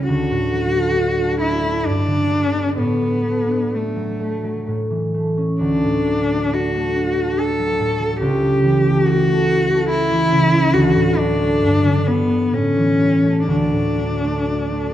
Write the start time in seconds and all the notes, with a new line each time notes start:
Already playing: C#2 C#3 G3 A3 E4
0.09 D2 F#4
0.31 A2
0.52 F#3
0.73 A3
0.95 D4
1.18 A3
1.40 D4 E4
1.61 A3
1.84 G2 D4
2.07 D3
2.30 G3
2.53 B3
2.77 A2 B3
3.01 F#3
3.25 A3
3.49 D4
3.72 A3
3.96 F#3
4.20 A3
4.44 F#3
4.67 A2
4.90 E3
5.14 A3
5.37 C#4
5.60 D2 D4
5.84 A2
6.07 F#3
6.30 A3
6.52 D4 F#4
6.74 A3
6.96 D4
7.17 A3
7.38 D4 A4
7.59 F#3
7.80 A2
8.00 F#3
8.21 C#2 G4
8.42 C#3
8.63 E3
8.85 A3
9.06 E4 F#4
9.27 A3
9.48 E4
9.69 A3
9.89 E4
10.11 E3
10.32 C#3
10.53 E3
10.73 D2 F#4
10.95 A2
11.17 F#3 D4
11.39 A3
11.61 G2
11.84 D3
12.07 G3 B3
12.30 B3
12.53 A2 C#4
12.77 E3
13.01 G3
13.24 A3
13.48 D2 D4
13.73 A2
13.97 F#3
14.22 A3
14.46 D4
14.69 A3